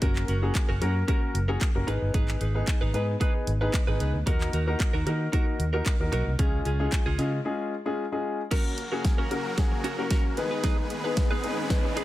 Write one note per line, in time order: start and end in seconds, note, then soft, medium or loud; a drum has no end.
0.01 0.23 F#1 loud
0.01 0.30 A#3 medium
0.01 0.23 C#4 medium
0.01 0.30 C#4 medium
0.01 0.30 F#4 medium
0.01 0.24 F#4 medium
0.01 0.30 A#4 loud
0.01 0.24 A#4 medium
0.01 kick loud
0.01 closed hi-hat medium
0.16 clap medium
0.28 0.49 F#1 medium
0.28 0.42 C#4 medium
0.28 0.42 F#4 medium
0.28 0.41 A#4 medium
0.28 closed hi-hat soft
0.42 0.70 A#3 medium
0.42 0.70 C#4 medium
0.42 0.53 C#4 soft
0.42 0.70 F#4 medium
0.42 0.54 F#4 medium
0.42 0.70 G#4 medium
0.42 0.54 A#4 medium
0.55 kick loud
0.55 clap loud
0.55 closed hi-hat medium
0.69 0.79 F#1 medium
0.69 0.80 C#4 medium
0.69 0.81 F#4 medium
0.69 0.81 A#4 medium
0.81 1.02 F#2 loud
0.81 1.00 A#3 medium
0.81 0.99 C#4 medium
0.81 1.01 C#4 medium
0.81 1.01 F#4 medium
0.81 0.95 F#4 medium
0.81 1.01 A#4 loud
0.81 0.94 A#4 medium
0.81 closed hi-hat soft
0.95 muted clean electric guitar stroke medium
1.08 1.36 A#3 medium
1.08 1.29 C#4 medium
1.08 1.36 C#4 medium
1.08 1.36 F#4 medium
1.08 1.22 F#4 medium
1.08 1.36 A#4 loud
1.08 1.21 A#4 medium
1.08 kick loud
1.08 closed hi-hat medium
1.22 muted clean electric guitar stroke soft
1.34 1.55 F#1 medium
1.34 muted clean electric guitar stroke soft
1.34 closed hi-hat medium
1.48 1.67 A#3 medium
1.48 1.67 C#4 medium
1.48 1.60 C#4 medium
1.48 1.67 F#4 medium
1.48 1.60 F#4 medium
1.48 1.67 G#4 loud
1.48 1.61 A#4 medium
1.61 kick loud
1.61 clap loud
1.61 closed hi-hat medium
1.75 1.85 F#1 medium
1.75 1.88 A#3 medium
1.75 1.88 C#4 medium
1.75 1.88 F#4 medium
1.75 1.88 A#4 loud
1.75 muted clean electric guitar stroke soft
1.87 1.99 G#1 medium
1.87 2.41 B3 medium
1.87 2.09 D#4 medium
1.87 2.41 D#4 medium
1.87 2.41 G#4 medium
1.87 2.01 G#4 medium
1.87 2.41 B4 loud
1.87 2.00 B4 medium
1.87 closed hi-hat soft
2.02 2.12 G1 medium
2.02 muted clean electric guitar stroke soft
2.14 2.35 G#1 loud
2.14 2.36 D#4 medium
2.14 2.36 G#4 medium
2.14 2.36 B4 loud
2.14 kick loud
2.14 closed hi-hat medium
2.28 clap medium
2.40 2.62 G#1 loud
2.40 2.55 D#4 medium
2.40 2.54 G#4 medium
2.40 2.53 B4 medium
2.40 closed hi-hat soft
2.54 2.83 B3 medium
2.54 2.83 D#4 medium
2.54 2.66 D#4 soft
2.54 2.83 G#4 medium
2.54 2.66 G#4 medium
2.54 2.67 B4 medium
2.54 2.83 B4 medium
2.67 muted clean electric guitar stroke soft
2.67 kick loud
2.67 clap loud
2.67 closed hi-hat medium
2.81 2.91 G#1 loud
2.81 2.92 D#4 medium
2.81 2.93 G#4 medium
2.81 2.94 B4 medium
2.94 3.15 G#2 loud
2.94 3.13 B3 medium
2.94 3.11 D#4 medium
2.94 3.13 D#4 medium
2.94 3.13 G#4 medium
2.94 3.08 G#4 medium
2.94 3.13 B4 medium
2.94 3.07 B4 medium
2.94 closed hi-hat soft
3.08 muted clean electric guitar stroke soft
3.20 3.48 B3 medium
3.20 3.42 D#4 medium
3.20 3.48 D#4 medium
3.20 3.49 G#4 medium
3.20 3.34 G#4 medium
3.20 3.49 B4 loud
3.20 3.33 B4 loud
3.20 kick loud
3.20 closed hi-hat medium
3.34 muted clean electric guitar stroke soft
3.47 3.68 G#1 medium
3.47 muted clean electric guitar stroke soft
3.47 closed hi-hat medium
3.61 3.79 B3 medium
3.61 3.79 D#4 medium
3.61 3.72 D#4 soft
3.61 3.79 G#4 medium
3.61 3.73 G#4 medium
3.61 3.73 B4 medium
3.61 3.79 B4 loud
3.74 kick loud
3.74 clap loud
3.74 closed hi-hat medium
3.87 3.97 G#1 medium
3.87 4.15 B3 medium
3.87 4.16 D#4 medium
3.87 3.99 D#4 medium
3.87 4.16 G#4 medium
3.87 3.99 G#4 medium
3.87 4.00 B4 medium
3.87 4.16 B4 medium
4.00 4.11 C#2 medium
4.00 4.17 D#4 medium
4.00 4.14 G#4 medium
4.00 4.13 B4 medium
4.00 closed hi-hat soft
4.14 4.24 D2 medium
4.14 muted clean electric guitar stroke soft
4.26 4.55 A#3 medium
4.26 4.48 D#4 medium
4.26 4.55 D#4 medium
4.26 4.55 F#4 medium
4.26 4.48 F#4 loud
4.26 4.55 A#4 loud
4.26 4.49 A#4 medium
4.26 kick loud
4.26 closed hi-hat medium
4.41 clap medium
4.53 4.74 D#2 medium
4.53 4.67 D#4 medium
4.53 4.66 F#4 medium
4.53 4.66 A#4 medium
4.53 closed hi-hat soft
4.67 4.95 A#3 medium
4.67 4.95 D#4 medium
4.67 4.78 D#4 medium
4.67 4.95 F#4 medium
4.67 4.79 F#4 medium
4.67 4.79 A#4 medium
4.67 4.95 A#4 medium
4.80 kick loud
4.80 clap loud
4.80 closed hi-hat medium
4.93 5.04 D#2 loud
4.93 5.05 D#4 medium
4.93 5.05 F#4 medium
4.93 5.06 A#4 medium
5.06 5.27 D#3 loud
5.06 5.25 A#3 medium
5.06 5.23 D#4 medium
5.06 5.25 D#4 medium
5.06 5.20 F#4 medium
5.06 5.26 F#4 medium
5.06 5.26 A#4 medium
5.06 5.19 A#4 medium
5.06 closed hi-hat soft
5.20 muted clean electric guitar stroke soft
5.32 5.61 A#3 medium
5.32 5.54 D#4 medium
5.32 5.61 D#4 medium
5.32 5.61 F#4 medium
5.32 5.46 F#4 medium
5.32 5.61 A#4 loud
5.32 5.45 A#4 medium
5.32 kick loud
5.32 closed hi-hat medium
5.47 muted clean electric guitar stroke soft
5.59 5.80 D#2 medium
5.59 muted clean electric guitar stroke soft
5.59 closed hi-hat medium
5.73 5.92 A#3 medium
5.73 5.92 D#4 medium
5.73 5.84 D#4 medium
5.73 5.85 F#4 medium
5.73 5.92 F#4 medium
5.73 5.85 A#4 medium
5.73 5.92 A#4 loud
5.86 kick loud
5.86 clap loud
5.86 closed hi-hat medium
6.00 6.10 D#2 medium
6.00 6.28 A#3 medium
6.00 6.28 D#4 medium
6.00 6.28 F#4 medium
6.00 6.28 A#4 loud
6.00 muted clean electric guitar stroke soft
6.12 6.24 B1 medium
6.12 6.34 D#4 medium
6.12 6.26 F#4 medium
6.12 6.25 A#4 loud
6.12 closed hi-hat soft
6.26 6.36 C2 medium
6.26 muted clean electric guitar stroke soft
6.39 6.60 C#2 loud
6.39 6.67 G#3 medium
6.39 6.60 C#4 medium
6.39 6.67 C#4 medium
6.39 6.67 F4 medium
6.39 6.61 F4 medium
6.39 6.67 G#4 medium
6.39 6.61 G#4 medium
6.39 kick loud
6.39 closed hi-hat medium
6.65 6.86 C#2 medium
6.65 6.79 C#4 medium
6.65 6.79 F4 medium
6.65 6.78 G#4 medium
6.65 closed hi-hat soft
6.79 7.07 G#3 medium
6.79 7.08 C#4 medium
6.79 6.91 C#4 soft
6.79 7.08 F4 medium
6.79 6.91 F4 medium
6.79 6.92 G#4 medium
6.79 7.08 G#4 medium
6.92 muted clean electric guitar stroke soft
6.92 kick loud
6.92 clap loud
6.92 closed hi-hat medium
7.06 7.16 C#2 loud
7.06 7.17 C#4 medium
7.06 7.18 F4 medium
7.06 7.18 G#4 medium
7.18 7.39 C#3 medium
7.18 7.38 G#3 medium
7.18 7.36 C#4 medium
7.18 7.38 C#4 medium
7.18 7.38 F4 medium
7.18 7.32 F4 medium
7.18 7.38 G#4 medium
7.18 7.31 G#4 medium
7.18 closed hi-hat soft
7.32 muted clean electric guitar stroke soft
7.45 7.73 G#3 medium
7.45 7.73 C#4 medium
7.45 7.73 F4 medium
7.45 7.73 G#4 medium
7.85 8.04 G#3 medium
7.85 8.04 C#4 medium
7.85 8.04 F4 medium
7.85 8.04 G#4 loud
8.12 8.40 G#3 medium
8.12 8.40 C#4 medium
8.12 8.40 F4 medium
8.12 8.40 G#4 loud
8.51 10.35 C#3 medium
8.51 10.35 F#3 medium
8.51 8.79 A#3 medium
8.51 10.35 A#3 medium
8.51 8.73 C#4 medium
8.51 8.79 C#4 medium
8.51 10.35 F#4 medium
8.51 8.79 F#4 medium
8.51 8.65 F#4 medium
8.51 10.35 A#4 medium
8.51 8.80 A#4 medium
8.51 8.64 A#4 medium
8.51 kick loud
8.51 snare medium
8.51 closed hi-hat medium
8.51 crash medium
8.51 riser medium
8.65 muted clean electric guitar stroke soft
8.78 muted clean electric guitar stroke soft
8.78 closed hi-hat soft
8.92 9.20 A#3 medium
8.92 9.20 C#4 medium
8.92 9.03 C#4 soft
8.92 9.20 F#4 medium
8.92 9.04 F#4 medium
8.92 9.20 G#4 medium
8.92 9.04 A#4 medium
9.05 kick loud
9.05 snare medium
9.05 closed hi-hat medium
9.18 9.30 C#4 medium
9.18 9.30 F#4 medium
9.18 9.31 A#4 medium
9.31 9.50 A#3 medium
9.31 9.50 C#4 medium
9.31 9.50 F#4 medium
9.31 9.50 A#4 medium
9.31 muted clean electric guitar stroke soft
9.31 closed hi-hat soft
9.45 muted clean electric guitar stroke soft
9.57 9.86 A#3 medium
9.57 9.86 C#4 medium
9.57 9.86 F#4 medium
9.57 9.86 G#4 medium
9.57 muted clean electric guitar stroke soft
9.57 kick loud
9.57 snare medium
9.57 closed hi-hat medium
9.72 muted clean electric guitar stroke soft
9.84 9.98 C#4 medium
9.84 9.97 F#4 medium
9.84 9.97 A#4 medium
9.84 closed hi-hat medium
9.98 10.35 A#3 medium
9.98 10.35 C#4 medium
9.98 10.09 C#4 medium
9.98 10.35 F#4 medium
9.98 10.10 F#4 medium
9.98 10.11 A#4 medium
9.98 10.35 A#4 medium
10.10 10.32 C#4 medium
10.10 10.24 F#4 medium
10.10 10.24 A#4 medium
10.10 kick loud
10.10 snare medium
10.10 closed hi-hat medium
10.25 muted clean electric guitar stroke soft
10.37 12.04 D#3 medium
10.37 12.04 G#3 medium
10.37 10.90 B3 medium
10.37 12.04 B3 medium
10.37 10.90 D#4 medium
10.37 10.90 G#4 medium
10.37 12.04 G#4 medium
10.37 12.04 B4 medium
10.37 10.91 B4 medium
10.37 muted clean electric guitar stroke soft
10.37 closed hi-hat soft
10.51 10.62 D#4 medium
10.51 10.63 G#4 medium
10.51 10.64 B4 medium
10.63 10.85 D#4 medium
10.63 10.77 G#4 medium
10.63 10.77 B4 loud
10.63 kick loud
10.63 snare medium
10.63 closed hi-hat medium
10.78 muted clean electric guitar stroke soft
10.90 muted clean electric guitar stroke soft
10.90 closed hi-hat soft
11.04 11.32 B3 medium
11.04 11.32 D#4 medium
11.04 11.16 D#4 medium
11.04 11.32 G#4 medium
11.04 11.16 G#4 medium
11.04 11.17 B4 medium
11.04 11.32 B4 medium
11.17 muted clean electric guitar stroke medium
11.17 kick loud
11.17 snare medium
11.17 closed hi-hat medium
11.31 11.42 D#4 medium
11.31 11.43 G#4 medium
11.31 11.43 B4 medium
11.43 11.63 B3 medium
11.43 11.61 D#4 medium
11.43 11.63 D#4 medium
11.43 11.63 G#4 medium
11.43 11.57 G#4 medium
11.43 11.63 B4 medium
11.43 11.56 B4 medium
11.43 closed hi-hat soft
11.57 muted clean electric guitar stroke soft
11.70 11.98 B3 medium
11.70 11.98 D#4 medium
11.70 11.98 G#4 medium
11.70 11.98 B4 medium
11.70 muted clean electric guitar stroke soft
11.70 kick loud
11.70 snare medium
11.70 closed hi-hat medium
11.84 muted clean electric guitar stroke soft
11.96 12.04 D#4 medium
11.96 12.04 G#4 medium
11.96 12.04 B4 medium
11.96 closed hi-hat medium